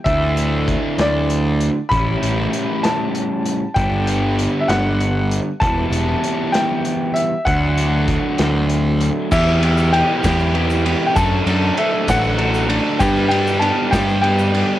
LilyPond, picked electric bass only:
\new Staff \with { instrumentName = "Picked electric bass" } { \clef bass \time 6/8 \key e \dorian \tempo 4. = 65 d,4. d,4. | a,,8 a,,8 r2 | g,,4. g,,4. | e,,8 e,,8 r2 |
d,4. d,4. | e,4. e,4. | fis,8 fis,8 r8 a,,4. | g,4. g,4. | }